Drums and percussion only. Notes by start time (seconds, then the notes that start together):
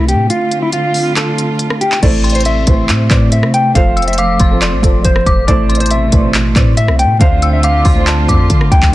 0.08 closed hi-hat
0.30 closed hi-hat
0.51 closed hi-hat
0.72 closed hi-hat
0.94 open hi-hat
1.16 clap, closed hi-hat
1.38 closed hi-hat
1.59 closed hi-hat
1.70 cross-stick
1.81 closed hi-hat
1.92 clap
2.03 kick, closed hi-hat, crash
2.24 closed hi-hat
2.30 closed hi-hat
2.35 closed hi-hat
2.40 closed hi-hat
2.45 closed hi-hat
2.67 kick, closed hi-hat
2.89 clap, closed hi-hat
3.10 kick, clap, closed hi-hat
3.32 closed hi-hat
3.43 cross-stick
3.54 closed hi-hat
3.75 kick, closed hi-hat
3.97 closed hi-hat
4.02 closed hi-hat
4.08 closed hi-hat
4.13 closed hi-hat
4.18 closed hi-hat
4.40 kick, closed hi-hat
4.62 clap, closed hi-hat
4.83 kick, closed hi-hat
5.05 kick, closed hi-hat
5.16 cross-stick
5.26 kick, closed hi-hat
5.48 kick, closed hi-hat
5.70 closed hi-hat
5.75 closed hi-hat
5.80 closed hi-hat
5.86 closed hi-hat
5.91 closed hi-hat
6.12 kick, closed hi-hat
6.34 clap, closed hi-hat
6.56 kick, clap, closed hi-hat
6.77 closed hi-hat
6.88 cross-stick
6.99 closed hi-hat
7.21 kick, closed hi-hat
7.42 closed hi-hat
7.63 closed hi-hat
7.85 kick, open hi-hat
8.07 clap, closed hi-hat
8.28 kick, closed hi-hat
8.50 kick, closed hi-hat
8.61 cross-stick
8.72 kick, closed hi-hat
8.82 kick, clap